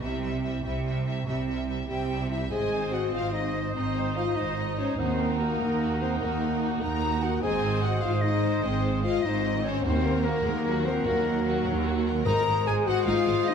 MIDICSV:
0, 0, Header, 1, 11, 480
1, 0, Start_track
1, 0, Tempo, 417246
1, 21, Time_signature, 12, 3, 24, 8
1, 3381, Tempo, 408998
1, 7221, Tempo, 403769
1, 15939, End_track
2, 0, Start_track
2, 0, Title_t, "Cor anglais"
2, 0, Program_c, 0, 69
2, 2895, Note_on_c, 0, 75, 54
2, 5795, Note_on_c, 0, 78, 67
2, 5813, Note_off_c, 0, 75, 0
2, 8659, Note_off_c, 0, 78, 0
2, 8666, Note_on_c, 0, 75, 66
2, 11165, Note_off_c, 0, 75, 0
2, 11523, Note_on_c, 0, 78, 80
2, 14363, Note_off_c, 0, 78, 0
2, 14406, Note_on_c, 0, 75, 84
2, 15939, Note_off_c, 0, 75, 0
2, 15939, End_track
3, 0, Start_track
3, 0, Title_t, "Flute"
3, 0, Program_c, 1, 73
3, 2187, Note_on_c, 1, 79, 55
3, 2633, Note_off_c, 1, 79, 0
3, 2662, Note_on_c, 1, 76, 52
3, 2889, Note_off_c, 1, 76, 0
3, 2896, Note_on_c, 1, 80, 69
3, 3375, Note_on_c, 1, 78, 58
3, 3393, Note_off_c, 1, 80, 0
3, 3612, Note_off_c, 1, 78, 0
3, 3619, Note_on_c, 1, 77, 62
3, 3838, Note_off_c, 1, 77, 0
3, 3845, Note_on_c, 1, 75, 49
3, 4326, Note_off_c, 1, 75, 0
3, 4339, Note_on_c, 1, 72, 58
3, 4815, Note_on_c, 1, 77, 54
3, 4833, Note_off_c, 1, 72, 0
3, 5054, Note_on_c, 1, 75, 58
3, 5072, Note_off_c, 1, 77, 0
3, 5521, Note_off_c, 1, 75, 0
3, 5528, Note_on_c, 1, 73, 50
3, 5769, Note_off_c, 1, 73, 0
3, 5775, Note_on_c, 1, 72, 62
3, 6247, Note_off_c, 1, 72, 0
3, 6253, Note_on_c, 1, 70, 50
3, 6990, Note_on_c, 1, 72, 51
3, 7007, Note_off_c, 1, 70, 0
3, 7212, Note_off_c, 1, 72, 0
3, 7219, Note_on_c, 1, 70, 56
3, 7617, Note_off_c, 1, 70, 0
3, 7942, Note_on_c, 1, 82, 66
3, 8426, Note_on_c, 1, 78, 72
3, 8443, Note_off_c, 1, 82, 0
3, 8654, Note_off_c, 1, 78, 0
3, 8661, Note_on_c, 1, 80, 76
3, 9120, Note_off_c, 1, 80, 0
3, 9128, Note_on_c, 1, 78, 59
3, 9364, Note_on_c, 1, 77, 67
3, 9382, Note_off_c, 1, 78, 0
3, 9601, Note_on_c, 1, 75, 61
3, 9619, Note_off_c, 1, 77, 0
3, 10095, Note_on_c, 1, 72, 69
3, 10113, Note_off_c, 1, 75, 0
3, 10562, Note_off_c, 1, 72, 0
3, 10570, Note_on_c, 1, 77, 71
3, 10803, Note_on_c, 1, 75, 68
3, 10821, Note_off_c, 1, 77, 0
3, 11278, Note_off_c, 1, 75, 0
3, 11285, Note_on_c, 1, 73, 71
3, 11356, Note_off_c, 1, 73, 0
3, 11512, Note_on_c, 1, 72, 84
3, 12010, Note_on_c, 1, 70, 70
3, 12028, Note_off_c, 1, 72, 0
3, 12741, Note_on_c, 1, 72, 79
3, 12759, Note_off_c, 1, 70, 0
3, 12979, Note_off_c, 1, 72, 0
3, 12987, Note_on_c, 1, 70, 75
3, 13690, Note_off_c, 1, 70, 0
3, 14414, Note_on_c, 1, 82, 117
3, 14900, Note_on_c, 1, 80, 85
3, 14918, Note_off_c, 1, 82, 0
3, 15148, Note_on_c, 1, 78, 102
3, 15166, Note_off_c, 1, 80, 0
3, 15376, Note_on_c, 1, 77, 86
3, 15394, Note_off_c, 1, 78, 0
3, 15855, Note_on_c, 1, 75, 98
3, 15873, Note_off_c, 1, 77, 0
3, 15939, Note_off_c, 1, 75, 0
3, 15939, End_track
4, 0, Start_track
4, 0, Title_t, "Violin section"
4, 0, Program_c, 2, 48
4, 21, Note_on_c, 2, 64, 42
4, 250, Note_off_c, 2, 64, 0
4, 264, Note_on_c, 2, 64, 31
4, 491, Note_off_c, 2, 64, 0
4, 505, Note_on_c, 2, 64, 40
4, 740, Note_off_c, 2, 64, 0
4, 761, Note_on_c, 2, 64, 39
4, 968, Note_off_c, 2, 64, 0
4, 982, Note_on_c, 2, 64, 38
4, 1220, Note_off_c, 2, 64, 0
4, 1244, Note_on_c, 2, 64, 36
4, 1457, Note_off_c, 2, 64, 0
4, 1470, Note_on_c, 2, 64, 39
4, 1695, Note_off_c, 2, 64, 0
4, 1708, Note_on_c, 2, 64, 35
4, 1938, Note_off_c, 2, 64, 0
4, 1952, Note_on_c, 2, 64, 36
4, 2167, Note_off_c, 2, 64, 0
4, 2181, Note_on_c, 2, 64, 35
4, 2181, Note_on_c, 2, 79, 57
4, 2401, Note_off_c, 2, 64, 0
4, 2415, Note_on_c, 2, 64, 39
4, 2630, Note_off_c, 2, 79, 0
4, 2652, Note_off_c, 2, 64, 0
4, 2665, Note_on_c, 2, 64, 37
4, 2665, Note_on_c, 2, 76, 55
4, 2901, Note_off_c, 2, 64, 0
4, 2901, Note_off_c, 2, 76, 0
4, 2910, Note_on_c, 2, 80, 66
4, 3375, Note_on_c, 2, 78, 58
4, 3383, Note_off_c, 2, 80, 0
4, 3469, Note_off_c, 2, 78, 0
4, 3631, Note_on_c, 2, 77, 66
4, 3854, Note_on_c, 2, 75, 52
4, 3863, Note_off_c, 2, 77, 0
4, 4330, Note_off_c, 2, 75, 0
4, 4341, Note_on_c, 2, 72, 56
4, 4813, Note_off_c, 2, 72, 0
4, 4828, Note_on_c, 2, 77, 50
4, 4922, Note_off_c, 2, 77, 0
4, 5070, Note_on_c, 2, 75, 50
4, 5536, Note_off_c, 2, 75, 0
4, 5547, Note_on_c, 2, 73, 49
4, 5779, Note_off_c, 2, 73, 0
4, 5787, Note_on_c, 2, 72, 56
4, 6253, Note_off_c, 2, 72, 0
4, 6270, Note_on_c, 2, 70, 64
4, 6985, Note_off_c, 2, 70, 0
4, 7000, Note_on_c, 2, 72, 54
4, 7225, Note_off_c, 2, 72, 0
4, 7225, Note_on_c, 2, 70, 64
4, 7934, Note_off_c, 2, 70, 0
4, 7960, Note_on_c, 2, 82, 65
4, 8427, Note_off_c, 2, 82, 0
4, 8431, Note_on_c, 2, 78, 58
4, 8668, Note_on_c, 2, 80, 71
4, 8672, Note_off_c, 2, 78, 0
4, 9140, Note_off_c, 2, 80, 0
4, 9151, Note_on_c, 2, 78, 68
4, 9383, Note_on_c, 2, 77, 64
4, 9390, Note_off_c, 2, 78, 0
4, 9607, Note_on_c, 2, 75, 65
4, 9625, Note_off_c, 2, 77, 0
4, 10087, Note_off_c, 2, 75, 0
4, 10095, Note_on_c, 2, 72, 65
4, 10570, Note_off_c, 2, 72, 0
4, 10590, Note_on_c, 2, 77, 75
4, 10822, Note_on_c, 2, 75, 55
4, 10823, Note_off_c, 2, 77, 0
4, 11293, Note_off_c, 2, 75, 0
4, 11298, Note_on_c, 2, 73, 73
4, 11536, Note_off_c, 2, 73, 0
4, 11542, Note_on_c, 2, 72, 71
4, 12014, Note_off_c, 2, 72, 0
4, 12029, Note_on_c, 2, 70, 77
4, 12749, Note_off_c, 2, 70, 0
4, 12757, Note_on_c, 2, 72, 66
4, 12852, Note_off_c, 2, 72, 0
4, 12984, Note_on_c, 2, 70, 69
4, 13689, Note_off_c, 2, 70, 0
4, 14412, Note_on_c, 2, 82, 100
4, 14862, Note_off_c, 2, 82, 0
4, 14896, Note_on_c, 2, 80, 77
4, 14992, Note_off_c, 2, 80, 0
4, 15140, Note_on_c, 2, 78, 95
4, 15374, Note_off_c, 2, 78, 0
4, 15375, Note_on_c, 2, 77, 89
4, 15849, Note_off_c, 2, 77, 0
4, 15851, Note_on_c, 2, 75, 95
4, 15939, Note_off_c, 2, 75, 0
4, 15939, End_track
5, 0, Start_track
5, 0, Title_t, "Clarinet"
5, 0, Program_c, 3, 71
5, 2895, Note_on_c, 3, 72, 51
5, 5729, Note_off_c, 3, 72, 0
5, 5777, Note_on_c, 3, 70, 49
5, 8622, Note_off_c, 3, 70, 0
5, 8666, Note_on_c, 3, 72, 63
5, 11165, Note_off_c, 3, 72, 0
5, 11528, Note_on_c, 3, 70, 65
5, 14419, Note_on_c, 3, 72, 81
5, 14437, Note_off_c, 3, 70, 0
5, 15939, Note_off_c, 3, 72, 0
5, 15939, End_track
6, 0, Start_track
6, 0, Title_t, "Violin section"
6, 0, Program_c, 4, 48
6, 16, Note_on_c, 4, 76, 41
6, 245, Note_off_c, 4, 76, 0
6, 259, Note_on_c, 4, 76, 40
6, 470, Note_off_c, 4, 76, 0
6, 484, Note_on_c, 4, 76, 36
6, 726, Note_off_c, 4, 76, 0
6, 740, Note_on_c, 4, 76, 34
6, 966, Note_off_c, 4, 76, 0
6, 980, Note_on_c, 4, 76, 37
6, 1202, Note_off_c, 4, 76, 0
6, 1216, Note_on_c, 4, 76, 40
6, 1452, Note_off_c, 4, 76, 0
6, 1466, Note_on_c, 4, 76, 41
6, 1687, Note_off_c, 4, 76, 0
6, 1701, Note_on_c, 4, 76, 39
6, 1923, Note_off_c, 4, 76, 0
6, 1937, Note_on_c, 4, 76, 36
6, 2161, Note_off_c, 4, 76, 0
6, 2175, Note_on_c, 4, 76, 38
6, 2405, Note_off_c, 4, 76, 0
6, 2419, Note_on_c, 4, 76, 42
6, 2643, Note_off_c, 4, 76, 0
6, 2657, Note_on_c, 4, 76, 37
6, 2896, Note_off_c, 4, 76, 0
6, 2904, Note_on_c, 4, 75, 43
6, 3126, Note_off_c, 4, 75, 0
6, 3146, Note_on_c, 4, 72, 46
6, 3367, Note_on_c, 4, 75, 49
6, 3382, Note_off_c, 4, 72, 0
6, 3615, Note_off_c, 4, 75, 0
6, 3620, Note_on_c, 4, 72, 42
6, 3860, Note_on_c, 4, 75, 38
6, 3862, Note_off_c, 4, 72, 0
6, 4085, Note_off_c, 4, 75, 0
6, 4101, Note_on_c, 4, 72, 41
6, 4343, Note_off_c, 4, 72, 0
6, 4359, Note_on_c, 4, 75, 48
6, 4590, Note_on_c, 4, 72, 46
6, 4592, Note_off_c, 4, 75, 0
6, 4827, Note_off_c, 4, 72, 0
6, 4844, Note_on_c, 4, 75, 46
6, 5058, Note_off_c, 4, 75, 0
6, 5070, Note_on_c, 4, 72, 45
6, 5307, Note_off_c, 4, 72, 0
6, 5315, Note_on_c, 4, 75, 41
6, 5548, Note_on_c, 4, 72, 42
6, 5549, Note_off_c, 4, 75, 0
6, 5784, Note_off_c, 4, 72, 0
6, 5790, Note_on_c, 4, 66, 44
6, 6008, Note_off_c, 4, 66, 0
6, 6044, Note_on_c, 4, 70, 49
6, 6272, Note_off_c, 4, 70, 0
6, 6273, Note_on_c, 4, 66, 45
6, 6506, Note_on_c, 4, 70, 48
6, 6507, Note_off_c, 4, 66, 0
6, 6743, Note_off_c, 4, 70, 0
6, 6748, Note_on_c, 4, 66, 39
6, 6967, Note_off_c, 4, 66, 0
6, 6979, Note_on_c, 4, 70, 43
6, 7219, Note_off_c, 4, 70, 0
6, 7235, Note_on_c, 4, 66, 42
6, 7459, Note_on_c, 4, 70, 44
6, 7470, Note_off_c, 4, 66, 0
6, 7700, Note_on_c, 4, 66, 45
6, 7703, Note_off_c, 4, 70, 0
6, 7927, Note_off_c, 4, 66, 0
6, 7939, Note_on_c, 4, 70, 48
6, 8184, Note_off_c, 4, 70, 0
6, 8188, Note_on_c, 4, 66, 48
6, 8430, Note_off_c, 4, 66, 0
6, 8435, Note_on_c, 4, 70, 49
6, 8674, Note_off_c, 4, 70, 0
6, 8682, Note_on_c, 4, 75, 48
6, 8900, Note_off_c, 4, 75, 0
6, 8918, Note_on_c, 4, 72, 53
6, 9154, Note_off_c, 4, 72, 0
6, 9159, Note_on_c, 4, 75, 50
6, 9387, Note_on_c, 4, 72, 47
6, 9394, Note_off_c, 4, 75, 0
6, 9623, Note_on_c, 4, 75, 46
6, 9627, Note_off_c, 4, 72, 0
6, 9848, Note_off_c, 4, 75, 0
6, 9873, Note_on_c, 4, 72, 51
6, 10110, Note_off_c, 4, 72, 0
6, 10116, Note_on_c, 4, 75, 53
6, 10351, Note_off_c, 4, 75, 0
6, 10357, Note_on_c, 4, 72, 48
6, 10581, Note_on_c, 4, 75, 52
6, 10591, Note_off_c, 4, 72, 0
6, 10806, Note_off_c, 4, 75, 0
6, 10838, Note_on_c, 4, 72, 59
6, 11070, Note_on_c, 4, 75, 60
6, 11071, Note_off_c, 4, 72, 0
6, 11307, Note_off_c, 4, 75, 0
6, 11322, Note_on_c, 4, 72, 52
6, 11553, Note_off_c, 4, 72, 0
6, 11556, Note_on_c, 4, 66, 58
6, 11774, Note_off_c, 4, 66, 0
6, 11782, Note_on_c, 4, 70, 63
6, 12024, Note_off_c, 4, 70, 0
6, 12036, Note_on_c, 4, 66, 58
6, 12270, Note_on_c, 4, 70, 56
6, 12271, Note_off_c, 4, 66, 0
6, 12502, Note_on_c, 4, 66, 55
6, 12508, Note_off_c, 4, 70, 0
6, 12728, Note_off_c, 4, 66, 0
6, 12737, Note_on_c, 4, 70, 62
6, 12981, Note_on_c, 4, 66, 58
6, 12983, Note_off_c, 4, 70, 0
6, 13210, Note_on_c, 4, 70, 61
6, 13224, Note_off_c, 4, 66, 0
6, 13458, Note_off_c, 4, 70, 0
6, 13459, Note_on_c, 4, 66, 61
6, 13684, Note_off_c, 4, 66, 0
6, 13686, Note_on_c, 4, 70, 60
6, 13933, Note_on_c, 4, 66, 58
6, 13934, Note_off_c, 4, 70, 0
6, 14177, Note_off_c, 4, 66, 0
6, 14192, Note_on_c, 4, 70, 64
6, 14424, Note_on_c, 4, 63, 80
6, 14426, Note_off_c, 4, 70, 0
6, 14645, Note_off_c, 4, 63, 0
6, 14665, Note_on_c, 4, 72, 59
6, 14760, Note_off_c, 4, 72, 0
6, 14899, Note_on_c, 4, 68, 64
6, 14994, Note_off_c, 4, 68, 0
6, 15136, Note_on_c, 4, 72, 58
6, 15232, Note_off_c, 4, 72, 0
6, 15372, Note_on_c, 4, 63, 79
6, 15598, Note_off_c, 4, 63, 0
6, 15616, Note_on_c, 4, 72, 66
6, 15711, Note_off_c, 4, 72, 0
6, 15939, End_track
7, 0, Start_track
7, 0, Title_t, "French horn section"
7, 0, Program_c, 5, 60
7, 2163, Note_on_c, 5, 67, 60
7, 2620, Note_off_c, 5, 67, 0
7, 2648, Note_on_c, 5, 64, 57
7, 2760, Note_off_c, 5, 64, 0
7, 2882, Note_on_c, 5, 68, 73
7, 3352, Note_on_c, 5, 66, 70
7, 3359, Note_off_c, 5, 68, 0
7, 3589, Note_on_c, 5, 65, 69
7, 3607, Note_off_c, 5, 66, 0
7, 3831, Note_on_c, 5, 63, 66
7, 3846, Note_off_c, 5, 65, 0
7, 4312, Note_on_c, 5, 60, 68
7, 4329, Note_off_c, 5, 63, 0
7, 4798, Note_off_c, 5, 60, 0
7, 4819, Note_on_c, 5, 65, 71
7, 5054, Note_on_c, 5, 63, 59
7, 5056, Note_off_c, 5, 65, 0
7, 5538, Note_off_c, 5, 63, 0
7, 5547, Note_on_c, 5, 61, 69
7, 5775, Note_on_c, 5, 60, 72
7, 5784, Note_off_c, 5, 61, 0
7, 6247, Note_off_c, 5, 60, 0
7, 6258, Note_on_c, 5, 58, 74
7, 6964, Note_off_c, 5, 58, 0
7, 6977, Note_on_c, 5, 60, 68
7, 7216, Note_on_c, 5, 58, 74
7, 7218, Note_off_c, 5, 60, 0
7, 7929, Note_off_c, 5, 58, 0
7, 7940, Note_on_c, 5, 70, 68
7, 8427, Note_off_c, 5, 70, 0
7, 8427, Note_on_c, 5, 66, 78
7, 8665, Note_off_c, 5, 66, 0
7, 8674, Note_on_c, 5, 68, 82
7, 9143, Note_off_c, 5, 68, 0
7, 9149, Note_on_c, 5, 66, 82
7, 9380, Note_on_c, 5, 65, 79
7, 9384, Note_off_c, 5, 66, 0
7, 9490, Note_off_c, 5, 65, 0
7, 9618, Note_on_c, 5, 63, 83
7, 10091, Note_on_c, 5, 60, 79
7, 10092, Note_off_c, 5, 63, 0
7, 10577, Note_on_c, 5, 65, 78
7, 10578, Note_off_c, 5, 60, 0
7, 10816, Note_off_c, 5, 65, 0
7, 10829, Note_on_c, 5, 63, 73
7, 11307, Note_off_c, 5, 63, 0
7, 11313, Note_on_c, 5, 61, 86
7, 11548, Note_off_c, 5, 61, 0
7, 11549, Note_on_c, 5, 60, 92
7, 12025, Note_on_c, 5, 58, 94
7, 12027, Note_off_c, 5, 60, 0
7, 12734, Note_on_c, 5, 60, 78
7, 12747, Note_off_c, 5, 58, 0
7, 12981, Note_off_c, 5, 60, 0
7, 12988, Note_on_c, 5, 58, 92
7, 13706, Note_off_c, 5, 58, 0
7, 14408, Note_on_c, 5, 70, 110
7, 14860, Note_off_c, 5, 70, 0
7, 14895, Note_on_c, 5, 68, 89
7, 15132, Note_on_c, 5, 66, 109
7, 15137, Note_off_c, 5, 68, 0
7, 15372, Note_on_c, 5, 65, 103
7, 15375, Note_off_c, 5, 66, 0
7, 15847, Note_off_c, 5, 65, 0
7, 15861, Note_on_c, 5, 63, 104
7, 15939, Note_off_c, 5, 63, 0
7, 15939, End_track
8, 0, Start_track
8, 0, Title_t, "Viola section"
8, 0, Program_c, 6, 48
8, 0, Note_on_c, 6, 55, 42
8, 240, Note_off_c, 6, 55, 0
8, 254, Note_on_c, 6, 55, 37
8, 465, Note_off_c, 6, 55, 0
8, 478, Note_on_c, 6, 55, 40
8, 712, Note_off_c, 6, 55, 0
8, 725, Note_on_c, 6, 55, 32
8, 953, Note_off_c, 6, 55, 0
8, 967, Note_on_c, 6, 55, 37
8, 1204, Note_off_c, 6, 55, 0
8, 1218, Note_on_c, 6, 55, 35
8, 1441, Note_off_c, 6, 55, 0
8, 1454, Note_on_c, 6, 55, 36
8, 1676, Note_off_c, 6, 55, 0
8, 1689, Note_on_c, 6, 55, 30
8, 1919, Note_off_c, 6, 55, 0
8, 1933, Note_on_c, 6, 55, 34
8, 2163, Note_off_c, 6, 55, 0
8, 2177, Note_on_c, 6, 55, 37
8, 2405, Note_off_c, 6, 55, 0
8, 2419, Note_on_c, 6, 55, 36
8, 2641, Note_off_c, 6, 55, 0
8, 2654, Note_on_c, 6, 55, 36
8, 2889, Note_on_c, 6, 60, 60
8, 2895, Note_off_c, 6, 55, 0
8, 4289, Note_off_c, 6, 60, 0
8, 4327, Note_on_c, 6, 63, 60
8, 8615, Note_off_c, 6, 63, 0
8, 8667, Note_on_c, 6, 60, 69
8, 9380, Note_on_c, 6, 56, 67
8, 9388, Note_off_c, 6, 60, 0
8, 10792, Note_off_c, 6, 56, 0
8, 10815, Note_on_c, 6, 60, 64
8, 11524, Note_off_c, 6, 60, 0
8, 11529, Note_on_c, 6, 58, 74
8, 12252, Note_on_c, 6, 56, 67
8, 12258, Note_off_c, 6, 58, 0
8, 12495, Note_on_c, 6, 54, 63
8, 12499, Note_off_c, 6, 56, 0
8, 12740, Note_on_c, 6, 53, 64
8, 12742, Note_off_c, 6, 54, 0
8, 12980, Note_on_c, 6, 54, 81
8, 12984, Note_off_c, 6, 53, 0
8, 14417, Note_off_c, 6, 54, 0
8, 14417, Note_on_c, 6, 56, 81
8, 15829, Note_off_c, 6, 56, 0
8, 15861, Note_on_c, 6, 60, 91
8, 15939, Note_off_c, 6, 60, 0
8, 15939, End_track
9, 0, Start_track
9, 0, Title_t, "Cello section"
9, 0, Program_c, 7, 48
9, 13, Note_on_c, 7, 48, 50
9, 655, Note_off_c, 7, 48, 0
9, 742, Note_on_c, 7, 48, 49
9, 1381, Note_off_c, 7, 48, 0
9, 1464, Note_on_c, 7, 48, 43
9, 2101, Note_off_c, 7, 48, 0
9, 2185, Note_on_c, 7, 48, 48
9, 2821, Note_off_c, 7, 48, 0
9, 2899, Note_on_c, 7, 44, 55
9, 3533, Note_off_c, 7, 44, 0
9, 3622, Note_on_c, 7, 44, 56
9, 4259, Note_off_c, 7, 44, 0
9, 4345, Note_on_c, 7, 44, 48
9, 4979, Note_off_c, 7, 44, 0
9, 5069, Note_on_c, 7, 44, 56
9, 5699, Note_off_c, 7, 44, 0
9, 5786, Note_on_c, 7, 39, 63
9, 6418, Note_off_c, 7, 39, 0
9, 6513, Note_on_c, 7, 39, 55
9, 7141, Note_off_c, 7, 39, 0
9, 7230, Note_on_c, 7, 39, 57
9, 7865, Note_off_c, 7, 39, 0
9, 7960, Note_on_c, 7, 39, 54
9, 8594, Note_off_c, 7, 39, 0
9, 8683, Note_on_c, 7, 44, 68
9, 9311, Note_off_c, 7, 44, 0
9, 9383, Note_on_c, 7, 44, 63
9, 10019, Note_off_c, 7, 44, 0
9, 10103, Note_on_c, 7, 44, 67
9, 10739, Note_off_c, 7, 44, 0
9, 10826, Note_on_c, 7, 44, 75
9, 11460, Note_off_c, 7, 44, 0
9, 11545, Note_on_c, 7, 39, 73
9, 12180, Note_off_c, 7, 39, 0
9, 12263, Note_on_c, 7, 39, 69
9, 12902, Note_off_c, 7, 39, 0
9, 12985, Note_on_c, 7, 39, 68
9, 13620, Note_off_c, 7, 39, 0
9, 13703, Note_on_c, 7, 39, 85
9, 14336, Note_off_c, 7, 39, 0
9, 14415, Note_on_c, 7, 44, 81
9, 14511, Note_off_c, 7, 44, 0
9, 14660, Note_on_c, 7, 44, 55
9, 14755, Note_off_c, 7, 44, 0
9, 14899, Note_on_c, 7, 44, 66
9, 14994, Note_off_c, 7, 44, 0
9, 15143, Note_on_c, 7, 44, 63
9, 15238, Note_off_c, 7, 44, 0
9, 15378, Note_on_c, 7, 44, 89
9, 15474, Note_off_c, 7, 44, 0
9, 15624, Note_on_c, 7, 44, 64
9, 15719, Note_off_c, 7, 44, 0
9, 15939, End_track
10, 0, Start_track
10, 0, Title_t, "Timpani"
10, 0, Program_c, 8, 47
10, 14414, Note_on_c, 8, 44, 78
10, 15088, Note_off_c, 8, 44, 0
10, 15939, End_track
11, 0, Start_track
11, 0, Title_t, "Double bass section"
11, 0, Program_c, 10, 48
11, 11, Note_on_c, 10, 36, 51
11, 654, Note_off_c, 10, 36, 0
11, 736, Note_on_c, 10, 36, 49
11, 1378, Note_off_c, 10, 36, 0
11, 1454, Note_on_c, 10, 36, 49
11, 2096, Note_off_c, 10, 36, 0
11, 2175, Note_on_c, 10, 36, 48
11, 2816, Note_off_c, 10, 36, 0
11, 2895, Note_on_c, 10, 32, 53
11, 3531, Note_off_c, 10, 32, 0
11, 3613, Note_on_c, 10, 32, 51
11, 4255, Note_off_c, 10, 32, 0
11, 4342, Note_on_c, 10, 32, 60
11, 4978, Note_off_c, 10, 32, 0
11, 5055, Note_on_c, 10, 32, 56
11, 5693, Note_off_c, 10, 32, 0
11, 5769, Note_on_c, 10, 39, 58
11, 6409, Note_off_c, 10, 39, 0
11, 6501, Note_on_c, 10, 39, 59
11, 7135, Note_off_c, 10, 39, 0
11, 7222, Note_on_c, 10, 39, 62
11, 7861, Note_off_c, 10, 39, 0
11, 7943, Note_on_c, 10, 39, 54
11, 8584, Note_off_c, 10, 39, 0
11, 8671, Note_on_c, 10, 32, 65
11, 9305, Note_off_c, 10, 32, 0
11, 9386, Note_on_c, 10, 32, 71
11, 10020, Note_off_c, 10, 32, 0
11, 10108, Note_on_c, 10, 32, 67
11, 10741, Note_off_c, 10, 32, 0
11, 10819, Note_on_c, 10, 32, 70
11, 11456, Note_off_c, 10, 32, 0
11, 11537, Note_on_c, 10, 39, 77
11, 12177, Note_off_c, 10, 39, 0
11, 12251, Note_on_c, 10, 39, 68
11, 12896, Note_off_c, 10, 39, 0
11, 12981, Note_on_c, 10, 39, 71
11, 13617, Note_off_c, 10, 39, 0
11, 13704, Note_on_c, 10, 39, 78
11, 14336, Note_off_c, 10, 39, 0
11, 14423, Note_on_c, 10, 32, 89
11, 14518, Note_off_c, 10, 32, 0
11, 14656, Note_on_c, 10, 32, 56
11, 14751, Note_off_c, 10, 32, 0
11, 14896, Note_on_c, 10, 32, 66
11, 14991, Note_off_c, 10, 32, 0
11, 15129, Note_on_c, 10, 32, 69
11, 15225, Note_off_c, 10, 32, 0
11, 15373, Note_on_c, 10, 32, 85
11, 15468, Note_off_c, 10, 32, 0
11, 15608, Note_on_c, 10, 32, 53
11, 15703, Note_off_c, 10, 32, 0
11, 15939, End_track
0, 0, End_of_file